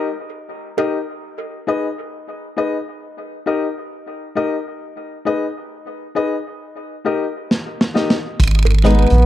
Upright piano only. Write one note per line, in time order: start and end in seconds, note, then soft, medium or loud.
0.77 0.96 D#4 medium
0.77 0.97 G4 medium
0.77 0.97 A#4 medium
0.77 0.97 D#5 medium
1.67 1.86 D#4 medium
1.67 1.86 G#4 medium
1.67 1.86 B4 medium
1.67 1.87 D#5 medium
2.57 2.75 D#4 medium
2.57 2.76 G#4 medium
2.57 2.76 B4 medium
2.57 2.76 D#5 medium
3.46 3.65 D#4 medium
3.46 3.65 G4 medium
3.46 3.65 A#4 medium
3.46 3.65 D#5 medium
4.35 4.54 D#4 medium
4.35 4.55 G4 medium
4.35 4.55 A#4 medium
4.35 4.55 D#5 medium
5.25 5.44 D#4 medium
5.25 5.44 G#4 medium
5.25 5.45 B4 medium
5.25 5.45 D#5 loud
6.15 6.34 D#4 medium
6.15 6.34 G#4 medium
6.15 6.34 B4 medium
6.15 6.34 D#5 loud
7.05 7.23 D#4 medium
7.05 7.23 G4 medium
7.05 7.24 A#4 medium
7.05 7.24 D#5 medium
7.94 8.13 D#4 medium
7.94 8.13 G4 medium
7.94 8.13 A#4 medium
7.94 8.13 D#5 medium
8.83 9.02 D#4 medium
8.83 9.02 G#4 medium
8.83 9.03 B4 medium
8.83 9.03 D#5 medium